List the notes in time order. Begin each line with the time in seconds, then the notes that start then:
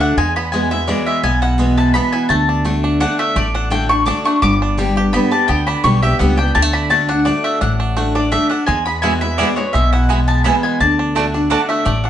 Already playing: D2 D3 A3 D4 F#4
0.00 D4 F#5
0.17 E2 G#3 G#5
0.36 B3 B5
0.52 E3 G#3 B3 F#4 G#5
0.71 B3 E4 F#4 E5
0.87 E3 G#3 B3 E4 F#4 D5
1.06 G#3 E5
1.23 B1 B2 B3 G#5
1.42 E4 F#5
1.58 E3 G#3 B3 F#4
1.77 E4 A5
1.94 E3 G#3 B3 F#4 B5
2.12 E4 G#5
2.29 D2 D3 A3 A5
2.49 D4
2.65 D3 A3 D4 F#4
2.84 D4
3.00 D3 A3 D4 F#4 F#5
3.19 A3 E5
3.36 A1 A2 A3 D5
3.54 D4 F#5
3.70 D3 A3 D4 F#4 G5
3.89 D4 F#4 C#6
4.06 D3 A3 D4 F#4 D6
4.24 A3 D4 F#4 C#6
4.42 G1 G2 B3 D6
4.62 D4
4.77 D3 G3 B3 G4
4.96 B3 G4
5.13 D3 G3 B3 G4 B5
5.31 B3 D4 G4 A5
5.48 D2 D3 B3 G5
5.67 D4 B5
5.84 B1 D3 G3 B3 G4 C#6
6.02 B3 G4 E5
6.19 C#2 D3 G3 B3 G4 F#5
6.37 B3 D4 G4 G5
6.55 D2 D3 G3 A5
6.62 A3
6.73 D4 B5
6.90 D3 A3 D4 F#4 A5
7.09 D4 F#4 F#5
7.25 D3 A3 D4 F#4 D5
7.44 A3 E5
7.61 A1 A2 D4 F#5
7.80 D4
7.96 D3 A3 D4 F#4
8.15 D4 F#4 D5
8.32 D3 A3 D4 F#4 E5
8.49 D4 F#4 F#5
8.67 E2 G#3 G#5
8.86 B3 B5
9.02 E3 G#3 B3 F#4 E5 G#5
9.21 B3 E4 F#4 E5
9.38 E3 G#3 B3 E4 F#4 D5 E5 G#5
9.56 G#3 B3 F#4 C#5
9.73 B1 B2 G#3 E5
9.93 E4 F#5
10.09 E3 G#3 B3 F#4 E5 G#5
10.28 B3 A5
10.44 E3 G#3 B3 E4 F#4 E5 G#5 B5
10.63 G#3 G#5
10.80 D2 D3 D4 A5
10.99 D4
11.15 D3 A3 D4 F#4 D5 A5
11.34 D4 F#4
11.50 D3 A3 D4 F#4 D5 F#5 A5
11.69 A3 E5
11.85 A1 A2 A3 D5
12.04 D4 F#5